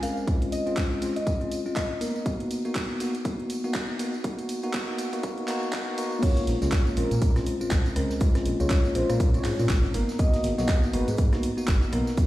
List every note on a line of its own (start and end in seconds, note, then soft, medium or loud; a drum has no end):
0.02 0.25 G#3 medium
0.02 0.25 C4 medium
0.02 0.25 C#4 medium
0.02 0.25 A#4 medium
0.02 0.21 F5 medium
0.02 open hi-hat loud
0.02 tambourine medium
0.17 tambourine soft
0.27 0.63 G#3 medium
0.27 0.63 C4 medium
0.27 0.63 C#4 medium
0.27 0.63 F4 medium
0.27 kick loud
0.27 closed hi-hat medium
0.27 tambourine soft
0.42 closed hi-hat medium
0.52 0.71 D#5 medium
0.52 open hi-hat loud
0.52 tambourine medium
0.67 0.99 G#3 medium
0.67 0.99 C4 medium
0.67 0.99 C#4 medium
0.67 0.99 F4 medium
0.67 closed hi-hat soft
0.67 tambourine soft
0.77 kick loud
0.77 clap loud
0.77 closed hi-hat medium
0.77 tambourine soft
1.02 1.16 G#3 medium
1.02 1.16 C4 medium
1.02 1.16 C#4 medium
1.02 1.16 F4 medium
1.02 open hi-hat loud
1.02 tambourine medium
1.16 1.32 D#5 medium
1.16 closed hi-hat medium
1.16 tambourine soft
1.27 kick loud
1.27 closed hi-hat medium
1.27 tambourine soft
1.41 1.59 G#3 medium
1.41 1.59 C4 medium
1.41 1.59 C#4 medium
1.41 1.59 F4 medium
1.41 closed hi-hat soft
1.52 open hi-hat loud
1.52 tambourine medium
1.66 1.98 G#3 medium
1.66 1.99 C4 medium
1.66 1.99 C#4 medium
1.66 1.99 F4 medium
1.66 tambourine soft
1.76 2.07 D#5 medium
1.76 kick loud
1.76 clap loud
1.76 closed hi-hat medium
1.76 tambourine soft
2.01 2.23 A#3 medium
2.01 2.23 B3 medium
2.01 2.23 D#4 medium
2.01 2.23 A#4 medium
2.01 open hi-hat loud
2.01 tambourine medium
2.16 tambourine soft
2.26 2.62 A#3 medium
2.26 2.62 B3 medium
2.26 2.62 D#4 medium
2.26 2.62 F#4 medium
2.26 kick loud
2.26 closed hi-hat medium
2.26 tambourine soft
2.40 closed hi-hat soft
2.51 open hi-hat loud
2.51 tambourine medium
2.65 2.98 A#3 medium
2.65 2.98 B3 medium
2.65 2.98 D#4 medium
2.65 2.98 F#4 medium
2.65 closed hi-hat soft
2.65 tambourine soft
2.75 kick loud
2.75 clap loud
2.75 closed hi-hat medium
2.75 tambourine soft
3.00 3.14 A#3 medium
3.00 3.14 B3 medium
3.00 3.14 D#4 medium
3.00 3.14 F#4 medium
3.00 open hi-hat loud
3.00 tambourine medium
3.15 closed hi-hat medium
3.15 tambourine soft
3.25 3.61 A#3 medium
3.25 3.61 B3 medium
3.25 3.61 D#4 medium
3.25 3.61 F#4 medium
3.25 kick loud
3.25 closed hi-hat medium
3.25 tambourine soft
3.39 closed hi-hat soft
3.50 open hi-hat loud
3.50 tambourine medium
3.64 3.97 A#3 medium
3.64 3.97 B3 medium
3.64 3.97 D#4 medium
3.64 3.97 F#4 medium
3.64 tambourine soft
3.74 kick loud
3.74 clap loud
3.74 closed hi-hat medium
3.74 tambourine soft
3.99 4.13 A#3 medium
3.99 4.13 B3 medium
3.99 4.13 D#4 medium
3.99 4.13 F#4 medium
3.99 open hi-hat loud
3.99 tambourine medium
4.14 tambourine soft
4.24 4.60 A#3 medium
4.24 4.60 B3 medium
4.24 4.60 D#4 medium
4.24 4.60 F#4 medium
4.24 kick loud
4.24 closed hi-hat medium
4.24 tambourine soft
4.39 closed hi-hat medium
4.39 tambourine soft
4.49 open hi-hat loud
4.49 tambourine medium
4.63 4.72 A#3 medium
4.63 4.72 B3 medium
4.63 4.72 D#4 medium
4.63 4.72 F#4 medium
4.63 closed hi-hat soft
4.63 tambourine soft
4.73 5.09 A#3 medium
4.73 5.10 B3 medium
4.73 5.10 D#4 medium
4.73 5.10 F#4 medium
4.73 kick loud
4.73 clap loud
4.73 closed hi-hat medium
4.73 tambourine soft
4.98 open hi-hat loud
4.98 tambourine medium
5.13 5.22 A#3 medium
5.13 5.22 B3 medium
5.13 5.22 D#4 medium
5.13 5.22 F#4 loud
5.13 closed hi-hat medium
5.13 tambourine soft
5.23 5.46 A#3 medium
5.23 5.46 B3 medium
5.23 5.47 D#4 medium
5.23 5.47 F#4 medium
5.23 kick loud
5.23 closed hi-hat medium
5.23 tambourine soft
5.38 closed hi-hat soft
5.48 5.71 A#3 medium
5.48 5.71 B3 medium
5.48 5.71 D#4 medium
5.48 5.71 F#4 loud
5.48 clap medium
5.48 open hi-hat loud
5.48 tambourine medium
5.63 tambourine soft
5.72 5.96 A#3 medium
5.72 5.96 B3 medium
5.72 5.96 D#4 medium
5.72 5.96 F#4 loud
5.72 kick loud
5.72 clap loud
5.72 closed hi-hat medium
5.72 tambourine soft
5.98 6.21 A#3 medium
5.98 6.21 B3 medium
5.98 6.21 D#4 medium
5.98 6.21 F#4 loud
5.98 open hi-hat loud
5.98 tambourine medium
6.12 tambourine soft
6.22 6.58 G#3 medium
6.22 6.58 A#3 medium
6.22 6.58 C#4 medium
6.22 6.58 F4 medium
6.22 6.57 C#5 loud
6.22 kick loud
6.22 closed hi-hat medium
6.22 tambourine medium
6.22 crash loud
6.22 shaker medium
6.37 snare soft
6.37 closed hi-hat medium
6.37 tambourine soft
6.47 6.56 A#1 loud
6.47 snare medium
6.47 open hi-hat loud
6.47 shaker medium
6.62 6.68 C#2 medium
6.62 6.94 G#3 medium
6.62 6.94 A#3 medium
6.62 6.94 C#4 medium
6.62 6.94 F4 medium
6.62 6.93 C#5 medium
6.62 snare medium
6.62 closed hi-hat soft
6.62 tambourine medium
6.71 kick loud
6.71 snare loud
6.71 clap loud
6.71 closed hi-hat medium
6.71 tambourine medium
6.71 shaker medium
6.87 tambourine soft
6.97 7.06 A#1 loud
6.97 7.11 G#3 medium
6.97 7.11 C4 medium
6.97 7.11 C#4 medium
6.97 7.11 F4 medium
6.97 7.31 A#4 loud
6.97 open hi-hat loud
6.97 shaker medium
7.11 7.40 A#2 medium
7.11 closed hi-hat medium
7.11 tambourine medium
7.22 kick loud
7.22 closed hi-hat medium
7.22 tambourine medium
7.22 shaker medium
7.36 7.54 G#3 medium
7.36 7.54 C4 medium
7.36 7.54 C#4 medium
7.36 7.54 F4 loud
7.36 cross-stick medium
7.36 snare medium
7.36 closed hi-hat soft
7.36 tambourine soft
7.46 open hi-hat loud
7.46 shaker medium
7.61 7.94 G#3 medium
7.61 7.94 C4 medium
7.61 7.94 C#4 medium
7.61 7.94 F4 medium
7.61 tambourine medium
7.71 7.88 A#1 loud
7.71 kick loud
7.71 snare loud
7.71 clap loud
7.71 closed hi-hat medium
7.71 tambourine medium
7.71 shaker medium
7.86 closed hi-hat soft
7.86 tambourine soft
7.96 8.05 C#2 loud
7.96 8.18 G#3 medium
7.96 8.18 C4 medium
7.96 8.18 C#4 medium
7.96 8.18 A#4 medium
7.96 cross-stick medium
7.96 open hi-hat loud
7.96 shaker medium
8.10 snare soft
8.10 tambourine medium
8.21 8.57 G#3 medium
8.21 8.57 C4 medium
8.21 8.57 C#4 medium
8.21 8.57 F4 medium
8.21 kick loud
8.21 closed hi-hat medium
8.21 tambourine medium
8.21 shaker medium
8.35 cross-stick medium
8.35 snare medium
8.35 closed hi-hat medium
8.35 tambourine soft
8.46 8.55 A#1 loud
8.46 open hi-hat loud
8.46 shaker medium
8.60 8.67 C#2 medium
8.60 8.93 G#3 medium
8.60 8.93 A#3 medium
8.60 8.93 C#4 medium
8.60 8.93 F4 medium
8.60 8.92 C#5 medium
8.60 closed hi-hat soft
8.60 tambourine medium
8.70 kick loud
8.70 snare loud
8.70 clap loud
8.70 closed hi-hat medium
8.70 tambourine medium
8.70 shaker medium
8.85 tambourine soft
8.95 9.04 A#1 loud
8.95 9.09 G#3 medium
8.95 9.09 C4 medium
8.95 9.09 C#4 medium
8.95 9.09 F4 medium
8.95 9.30 C5 loud
8.95 open hi-hat loud
8.95 shaker medium
9.10 9.39 A#2 medium
9.10 cross-stick medium
9.10 closed hi-hat medium
9.10 tambourine medium
9.20 kick loud
9.20 closed hi-hat medium
9.20 tambourine medium
9.20 shaker medium
9.34 9.53 G#3 medium
9.34 9.53 C4 medium
9.34 9.53 C#4 medium
9.34 9.53 F4 loud
9.34 9.66 C#5 loud
9.34 closed hi-hat soft
9.34 tambourine soft
9.44 9.54 G#2 medium
9.44 snare medium
9.44 clap medium
9.44 open hi-hat loud
9.44 open hi-hat medium
9.59 9.71 A#2 medium
9.59 9.92 G#3 medium
9.59 9.92 C4 medium
9.59 9.92 C#4 medium
9.59 9.92 F4 medium
9.59 tambourine medium
9.69 9.87 G#1 loud
9.69 kick loud
9.69 snare loud
9.69 clap loud
9.69 closed hi-hat medium
9.69 tambourine medium
9.69 shaker medium
9.84 tambourine soft
9.94 10.03 G#1 medium
9.94 10.17 A#3 medium
9.94 10.17 B3 medium
9.94 10.17 D#4 medium
9.94 10.17 A#4 medium
9.94 snare soft
9.94 open hi-hat loud
9.94 shaker medium
10.09 snare soft
10.09 tambourine medium
10.19 10.55 A#3 medium
10.19 10.55 B3 medium
10.19 10.55 D#4 medium
10.19 10.55 F#4 medium
10.19 10.53 D#5 loud
10.19 kick loud
10.19 closed hi-hat medium
10.19 tambourine medium
10.19 shaker medium
10.34 snare soft
10.34 closed hi-hat soft
10.34 tambourine soft
10.43 10.53 G#1 loud
10.43 snare medium
10.43 open hi-hat loud
10.43 shaker medium
10.58 10.65 B1 medium
10.58 10.91 A#3 medium
10.58 10.91 B3 medium
10.58 10.91 D#4 medium
10.58 10.91 F#4 loud
10.58 10.90 D#5 loud
10.58 snare medium
10.58 closed hi-hat soft
10.58 tambourine medium
10.68 kick loud
10.68 snare loud
10.68 clap loud
10.68 closed hi-hat medium
10.68 tambourine medium
10.68 shaker medium
10.83 tambourine soft
10.93 11.03 G#1 loud
10.93 11.07 A#3 medium
10.93 11.08 B3 medium
10.93 11.08 D#4 medium
10.93 11.08 F#4 medium
10.93 11.28 B4 loud
10.93 open hi-hat loud
10.93 shaker medium
11.08 11.37 G#2 medium
11.08 closed hi-hat medium
11.08 tambourine medium
11.17 kick loud
11.17 closed hi-hat medium
11.17 tambourine medium
11.17 shaker medium
11.33 11.51 A#3 medium
11.33 11.51 B3 medium
11.33 11.51 D#4 medium
11.33 11.51 F#4 loud
11.33 cross-stick medium
11.33 snare medium
11.33 closed hi-hat soft
11.33 tambourine soft
11.43 open hi-hat loud
11.43 shaker medium
11.57 11.90 A#3 medium
11.57 11.90 B3 medium
11.57 11.90 D#4 medium
11.57 11.90 F#4 medium
11.57 tambourine medium
11.67 11.85 G#1 loud
11.67 kick loud
11.67 snare loud
11.67 clap loud
11.67 closed hi-hat medium
11.67 tambourine medium
11.67 shaker medium
11.82 closed hi-hat soft
11.82 tambourine soft
11.93 12.02 B1 loud
11.93 12.15 A#3 medium
11.93 12.15 B3 medium
11.93 12.15 D#4 medium
11.93 12.15 A#4 medium
11.93 cross-stick medium
11.93 open hi-hat loud
11.93 shaker medium
12.07 snare soft
12.07 tambourine medium
12.17 12.27 A#3 medium
12.17 12.27 B3 medium
12.17 12.27 D#4 medium
12.17 12.27 F#4 medium
12.17 kick loud
12.17 closed hi-hat medium
12.17 tambourine medium
12.17 shaker medium